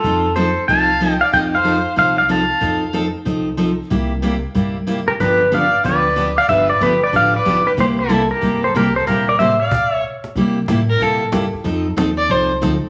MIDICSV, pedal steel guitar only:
0, 0, Header, 1, 2, 480
1, 0, Start_track
1, 0, Tempo, 322407
1, 57, Time_signature, 4, 2, 24, 8
1, 19192, End_track
2, 0, Start_track
2, 0, Title_t, "Pedal steel guitar"
2, 0, Program_c, 0, 26
2, 0, Note_on_c, 0, 69, 71
2, 532, Note_on_c, 0, 72, 86
2, 561, Note_off_c, 0, 69, 0
2, 1013, Note_on_c, 0, 81, 110
2, 1028, Note_off_c, 0, 72, 0
2, 1668, Note_off_c, 0, 81, 0
2, 1668, Note_on_c, 0, 79, 110
2, 1801, Note_on_c, 0, 77, 75
2, 1820, Note_off_c, 0, 79, 0
2, 1982, Note_off_c, 0, 77, 0
2, 1989, Note_on_c, 0, 79, 106
2, 2069, Note_off_c, 0, 79, 0
2, 2303, Note_on_c, 0, 77, 92
2, 2903, Note_off_c, 0, 77, 0
2, 2957, Note_on_c, 0, 77, 96
2, 3231, Note_off_c, 0, 77, 0
2, 3249, Note_on_c, 0, 77, 87
2, 3426, Note_off_c, 0, 77, 0
2, 3446, Note_on_c, 0, 81, 79
2, 4331, Note_off_c, 0, 81, 0
2, 7560, Note_on_c, 0, 70, 76
2, 7634, Note_off_c, 0, 70, 0
2, 7748, Note_on_c, 0, 71, 101
2, 8236, Note_off_c, 0, 71, 0
2, 8253, Note_on_c, 0, 77, 103
2, 8713, Note_off_c, 0, 77, 0
2, 8719, Note_on_c, 0, 74, 93
2, 9492, Note_off_c, 0, 74, 0
2, 9498, Note_on_c, 0, 77, 86
2, 9657, Note_off_c, 0, 77, 0
2, 9662, Note_on_c, 0, 76, 111
2, 9964, Note_off_c, 0, 76, 0
2, 9969, Note_on_c, 0, 74, 93
2, 10148, Note_off_c, 0, 74, 0
2, 10165, Note_on_c, 0, 71, 91
2, 10463, Note_off_c, 0, 71, 0
2, 10474, Note_on_c, 0, 74, 88
2, 10623, Note_off_c, 0, 74, 0
2, 10662, Note_on_c, 0, 77, 90
2, 10951, Note_off_c, 0, 77, 0
2, 10961, Note_on_c, 0, 74, 89
2, 11417, Note_on_c, 0, 71, 73
2, 11435, Note_off_c, 0, 74, 0
2, 11492, Note_off_c, 0, 71, 0
2, 11619, Note_on_c, 0, 72, 91
2, 11695, Note_off_c, 0, 72, 0
2, 11896, Note_on_c, 0, 69, 86
2, 12336, Note_off_c, 0, 69, 0
2, 12372, Note_on_c, 0, 70, 85
2, 12860, Note_off_c, 0, 70, 0
2, 12866, Note_on_c, 0, 72, 78
2, 13037, Note_off_c, 0, 72, 0
2, 13052, Note_on_c, 0, 70, 73
2, 13336, Note_off_c, 0, 70, 0
2, 13342, Note_on_c, 0, 72, 82
2, 13501, Note_off_c, 0, 72, 0
2, 13507, Note_on_c, 0, 70, 78
2, 13816, Note_off_c, 0, 70, 0
2, 13828, Note_on_c, 0, 74, 90
2, 13972, Note_off_c, 0, 74, 0
2, 13978, Note_on_c, 0, 76, 92
2, 14289, Note_on_c, 0, 77, 75
2, 14291, Note_off_c, 0, 76, 0
2, 14897, Note_off_c, 0, 77, 0
2, 19192, End_track
0, 0, End_of_file